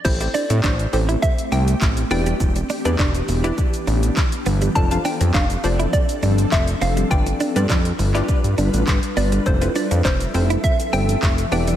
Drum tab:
CC |x---------------|----------------|----------------|----------------|
HH |-xox-xox-xox-xox|-xox-xox-xox-xox|-xox-xox-xox-xox|-xox-xox-xox-xox|
SH |xxxxxxxxxxxxxxxx|xxxxxxxxxxxxxxxx|xxxxxxxxxxxxxxxx|xxxxxxxxxxxxxxxx|
CP |----x-------x---|----x-------x---|----x-------x---|----x--x----x---|
BD |o---o---o---o---|o---o---o---o---|o---o---o---o---|o---o---o---o---|

CC |----------------|
HH |-xox-xox-xox-xox|
SH |xxxxxxxxxxxxxxxx|
CP |----x-------x---|
BD |o---o---o---o---|